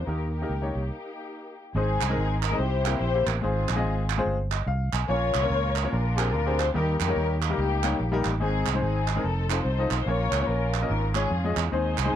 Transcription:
0.06 D#2 D#3 A#3 D#4 G4 A#4
0.32 D#4 G4 A#4
0.41 A#3 D#4 G4 A#4
0.49 C#2
0.61 A#3 D#4 G4 C#5
0.75 C2 A#3 D#4 G4
1.75 G#1 G#2 G#3 C4 D#4 G#4 C5
2.01 C2, clap
2.09 G#3 C4 D#4 G#4 A#4
2.17 G#1
2.43 A#4, clap
2.51 G#3 C4 D#4 G#4 D#5
2.57 C2 C3 E4 G4 C5
2.85 A#3 C4 E4 G4 A#4, clap
2.99 A#1 C5
3.14 A#3 C4 E4 G4 C5
3.26 A1 A#4, clap
3.41 G#1 G#2 G#3 C4 F4 G#4 C5
3.69 A#1, clap
3.75 G#3 C4 F4 G#4 D#5
3.84 G#1
4.10 clap
4.17 G#3 C4 F4 G#4 C5
4.25 G1
4.52 D#5, clap
4.67 C2 F5
4.93 B1 G#5, clap
5.09 A#1 A#2 A#3 C#4 F4 A#4 C#5
5.34 C2, clap
5.41 A#3 C#4 F4 A#4 C#5
5.50 C#2
5.76 clap
5.83 A#3 C#4 F4 A#4 C#5
5.92 A#1 A#2 D4 F4 A#4
6.16 C4 D4 G4 G#4 A#4, clap
6.33 D2 A#4
6.46 C4 D4 G4 G#4 C5
6.59 C5, clap
6.74 D#2 D#3 G3 A#3 D#4 G4 A#4
7.00 F2 D#4 G4 A#4, clap
7.08 G3 A#3 D#4 G4 C#5
7.16 D#2
7.42 A#3 D#4 G4, clap
7.49 G3 A#3 D#4 G4 A#4
7.58 C#2
7.83 G3 A#3 D#4 G4 C#5, clap
8.00 A#1
8.12 G3 A#3 D#4 G4 A#4
8.25 A1, clap
8.40 G#1 G#2 G#3 C4 D#4 G#4 C5
8.66 C2, clap
8.73 G#3 C4 D#4 G#4 C5
8.81 G#1 C4 D#4 G#4
9.08 clap
9.15 G#3 C4 D#4 G#4 A#4
9.24 F1 C4 D#4 A4
9.49 C4 D#4 F4 A4 C5, clap
9.58 D#4 A4 C5
9.65 C2
9.78 C4 D#4 F4 A4 D#5
9.91 B1 C5, clap
10.06 A#1 A#2 A#3 C#4 F4 A#4 C#5
10.32 C#2, clap
10.40 A#3 C#4 F4 A#4 C#5
10.47 A#1 C#4 F4 A#4
10.74 clap
10.81 A#3 C#4 F4 A#4 D#5
10.88 G#1 G#2 C#4 F4 A#4
11.15 G#3 C#4 F4 G#4 C#5, clap
11.31 F2
11.44 G#3 C#4 F4 G#4 D#5
11.56 E2, clap
11.72 D#2 D#3 G#3 C4 D#4 G#4 C5
11.98 C2, clap
12.05 G#3 C4 D#4 G#4 C5

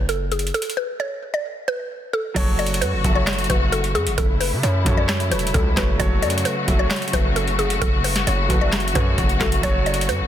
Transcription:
Already playing: F#1
0.09 A4, closed hi-hat
0.32 G#4, closed hi-hat
0.39 closed hi-hat
0.47 closed hi-hat
0.54 A4, closed hi-hat
0.62 closed hi-hat
0.70 closed hi-hat
0.77 B4
1.00 C#5
1.34 D5
1.68 B4
2.13 A4
2.34 F#1 C#3 F#3 A3 F#4 A4 C#5, kick, closed hi-hat, crash
2.59 D5, closed hi-hat
2.67 closed hi-hat
2.74 closed hi-hat
2.81 F#2 B4, closed hi-hat
2.93 F#1
3.03 F#1 F#3 F#4 A4 E5, kick, closed hi-hat
3.14 F#3 F#4 A4 C#5 E5
3.27 C#5, snare, clap, closed hi-hat
3.33 closed hi-hat
3.39 closed hi-hat
3.44 F#3, closed hi-hat
3.49 F#1 F#4 A4 B4 E5, kick, closed hi-hat
3.72 A4, closed hi-hat
3.84 closed hi-hat
3.95 F#2 G#4, closed hi-hat
4.07 F#1, closed hi-hat
4.18 F#1 E4 A4, kick, closed hi-hat
4.40 B4, open hi-hat
4.52 C#3
4.63 F#2 C#5, closed hi-hat
4.84 F#2 F#3 F#4 A4 C#5, kick, closed hi-hat
4.95 F#3 F#4 A4 C#5 D5
5.09 C#5, snare, clap, closed hi-hat
5.20 closed hi-hat
5.30 E1 F#3 F#4 A4 B4 C#5, closed hi-hat
5.39 closed hi-hat
5.47 closed hi-hat
5.54 C#2 A4, kick, closed hi-hat
5.75 F#1 F#3 F#4 A4 B4 C#5, kick, snare, clap, closed hi-hat
5.98 F#1 F#3 F#4 A4 C#5, kick, closed hi-hat
6.22 F#2 D5, closed hi-hat
6.30 closed hi-hat
6.38 closed hi-hat
6.45 B4, closed hi-hat
6.66 F#1 F#3 F#4 A4 E5, kick, closed hi-hat
6.77 F#3 F#4 A4 C#5
6.91 C#5, snare, clap, closed hi-hat
6.96 closed hi-hat
7.02 closed hi-hat
7.08 F#3, closed hi-hat
7.13 F#1 F#4 A4 B4 E5, kick, closed hi-hat
7.36 A4, closed hi-hat
7.48 closed hi-hat
7.59 G#4, closed hi-hat
7.70 closed hi-hat
7.81 F#1 A4, kick, closed hi-hat
8.04 B4, closed hi-hat, open hi-hat
8.16 snare, closed hi-hat
8.27 F#1 C#5, closed hi-hat
8.48 F#1 F#3 F#4 A4 B4, kick, closed hi-hat
8.59 F#3 F#4 A4 D5 E5
8.73 snare, clap, closed hi-hat
8.80 closed hi-hat
8.88 closed hi-hat
8.93 F#2 F#3 F#4 A4 B4 C#5, kick, closed hi-hat
9.18 F#1, kick, closed hi-hat
9.29 closed hi-hat
9.39 F#1 F#3 F#4 A4 E5, kick, snare, clap, closed hi-hat
9.52 closed hi-hat
9.62 F#1 F#3 F#4 A4 C#5, kick, closed hi-hat
9.86 D5, closed hi-hat
9.94 closed hi-hat
10.01 closed hi-hat
10.09 F#2 B4, closed hi-hat
10.20 F#1

